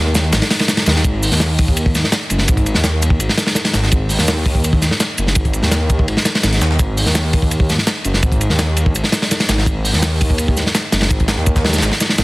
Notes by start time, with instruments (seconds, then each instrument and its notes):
Already playing: detuned saw bass D#2
0.15 snare, ride, shaker
0.33 detuned saw bass G#1, snare, ride, shaker
0.42 snare, ride
0.50 snare, open hi-hat, ride
0.59 snare, ride
0.68 snare, ride, shaker
0.77 snare, ride
0.86 detuned saw bass D#2, snare, ride, shaker
0.96 snare
1.04 detuned saw bass G#1, kick, ride, shaker
1.23 open hi-hat, shaker
1.32 detuned saw bass D#2, snare, closed hi-hat
1.40 snare, ride, shaker
1.58 kick, open hi-hat, ride
1.68 kick
1.77 ride, shaker
1.86 kick
1.95 snare, ride, shaker
2.04 snare
2.12 snare, ride, shaker
2.30 detuned saw bass F#1, ride, shaker
2.38 snare
2.48 detuned saw bass G#1, kick, ride, shaker
2.57 kick, closed hi-hat
2.66 ride, shaker
2.74 detuned saw bass D#2, snare
2.84 snare, ride, shaker
3.02 ride, shaker
3.10 kick
3.20 detuned saw bass G#1, ride, shaker
3.29 snare
3.37 snare, ride, shaker
3.47 snare, ride
3.55 snare, ride, shaker
3.65 snare, closed hi-hat, ride
3.73 detuned saw bass G#1, snare, ride, shaker
3.83 snare
3.91 detuned saw bass G#1, kick, ride, shaker
4.09 open hi-hat, shaker
4.19 detuned saw bass D#2, snare, closed hi-hat
4.28 snare, ride, shaker
4.46 kick, open hi-hat, ride
4.55 kick
4.64 ride, shaker
4.73 kick
4.82 snare, ride, shaker
4.91 snare
5.00 snare, ride, shaker
5.18 detuned saw bass F#1, ride, shaker
5.27 snare
5.35 detuned saw bass G#1, kick, ride, shaker
5.45 kick, closed hi-hat
5.53 ride, shaker
5.63 detuned saw bass D#2, snare
5.71 snare, ride, shaker
5.90 kick, ride, shaker
5.99 kick
6.08 detuned saw bass G#1, ride
6.17 snare
6.25 snare, ride, shaker
6.35 snare, ride
6.43 detuned saw bass G#1, snare, ride, shaker
6.53 snare, closed hi-hat
6.61 detuned saw bass D#2, snare, shaker
6.71 snare
6.79 detuned saw bass G#1, kick, ride, shaker
6.97 open hi-hat, shaker
7.06 detuned saw bass D#2, snare, closed hi-hat
7.15 snare, ride, shaker
7.33 kick, open hi-hat, ride
7.42 kick
7.51 ride, shaker
7.60 kick
7.69 snare, ride, shaker
7.78 snare
7.87 snare, ride, shaker
8.04 detuned saw bass F#1, ride, shaker
8.14 snare
8.23 detuned saw bass G#1, kick, ride, shaker
8.32 kick, closed hi-hat
8.41 ride, shaker
8.50 detuned saw bass D#2, snare
8.59 snare, ride, shaker
8.76 ride, shaker
8.86 kick
8.95 detuned saw bass G#1, ride, shaker
9.04 snare
9.12 snare, ride, shaker
9.22 snare, ride
9.31 snare, ride, shaker
9.40 snare, closed hi-hat, ride
9.49 detuned saw bass G#1, snare, ride, shaker
9.58 snare
9.66 detuned saw bass G#1, kick, ride, shaker
9.85 open hi-hat, shaker
9.93 detuned saw bass D#2, snare, closed hi-hat
10.02 snare, ride, shaker
10.21 kick, open hi-hat, ride
10.30 kick
10.38 ride, shaker
10.48 kick
10.57 snare, ride, shaker
10.66 snare
10.75 snare, ride, shaker
10.92 detuned saw bass F#1, snare, ride, shaker
11.01 snare, ride
11.10 detuned saw bass G#1, kick, ride, shaker
11.20 kick, closed hi-hat
11.28 snare, ride, shaker
11.38 detuned saw bass D#2, snare
11.46 kick, ride, shaker
11.56 kick, snare, shaker
11.64 snare, ride
11.69 snare, ride
11.73 snare, ride, shaker
11.78 snare, ride
11.82 detuned saw bass G#1, snare, ride, shaker
11.92 snare
12.00 snare, ride, shaker
12.09 snare
12.18 detuned saw bass G#1, snare, ride, shaker